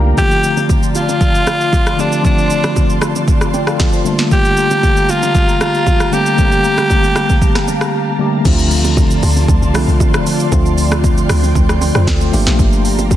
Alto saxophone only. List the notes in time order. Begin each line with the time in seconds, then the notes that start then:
0.18 G4
0.96 F4
2.00 D4
2.26 D4
4.33 G4
5.10 F4
5.62 F4
6.13 G4